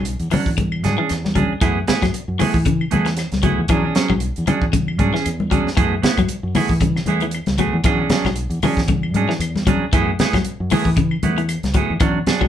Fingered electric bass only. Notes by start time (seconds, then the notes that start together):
Already playing: B1
0.20 E2
0.32 muted fingered electric bass stroke
0.46 E2
0.85 G#2
1.11 E2
1.61 F#2
2.02 F#2
2.15 muted fingered electric bass stroke
2.28 F#2
2.54 E3
2.92 E2
3.32 C#2
3.58 E2
3.69 E2
4.10 B1
4.38 E2
4.48 muted fingered electric bass stroke
4.61 E2
4.99 G#2
5.26 E2
5.77 F#2
6.18 F#2
6.30 muted fingered electric bass stroke
6.43 F#2
6.69 E3
7.06 E2
7.47 C#2
7.73 E2
7.84 E2
8.25 B1
8.50 E2
8.63 muted fingered electric bass stroke
8.76 E2
9.14 G#2
9.39 E2
9.92 F#2
10.33 F#2
10.45 muted fingered electric bass stroke
10.60 F#2
10.86 E3
11.24 E2
11.64 C#2
11.90 E2
12.00 E2
12.41 B1